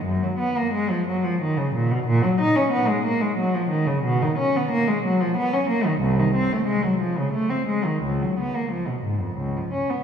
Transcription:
\new Staff \with { instrumentName = "Cello" } { \clef bass \time 3/4 \key ges \major \tempo 4 = 90 ges,16 ges16 ces'16 bes16 aes16 f16 ges16 f16 ees16 des16 bes,16 ces16 | bes,16 ges16 ees'16 des'16 ces'16 aes16 bes16 aes16 ges16 f16 ees16 des16 | \key fis \major b,16 dis16 cis'16 b16 ais16 gis16 fis16 eis16 b16 cis'16 ais16 dis16 | c,16 ees16 c'16 a16 gis16 ges16 eis16 cis16 a16 c'16 gis16 ees16 |
cis,16 fis16 b16 ais16 eis16 b,16 gis,16 eis,16 cis,16 eis16 cis'16 b16 | }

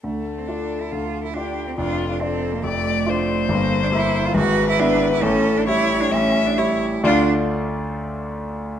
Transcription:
<<
  \new Staff \with { instrumentName = "Violin" } { \time 4/4 \key d \minor \tempo 4 = 137 a'2. g'4 | f'4 a'4 d''4 c''4~ | c''2 b'2 | a'4 cis''4 e''4 cis''8 r8 |
f'8 r2. r8 | }
  \new Staff \with { instrumentName = "Cello" } { \time 4/4 \key d \minor a8. c'16 d'8. e'16 f'8. e'16 d'8. c'16 | d'8. d'16 c'8. bes16 a2 | bes8. d'16 e'8. f'16 fis'8. e'16 d'8. e'16 | cis'8. d'16 e'8. d'16 cis'8. d'16 e'4 |
d'8 r2. r8 | }
  \new Staff \with { instrumentName = "Grand piano" } { \time 4/4 \key d \minor <d, d>4 <d' f' d''>4 <d, d>4 <d' f' d''>4 | <f,, f,>4 <d' f' d''>4 <f,, f,>4 <d' f' d''>4 | <g,, g,>4 <bes e' e''>4 <gis,, gis,>4 <b e' e''>4 | <a,, a,>4 <g e' e''>4 <a,, a,>4 <g e' e''>4 |
<d, d a f' d'' f''>8 r2. r8 | }
>>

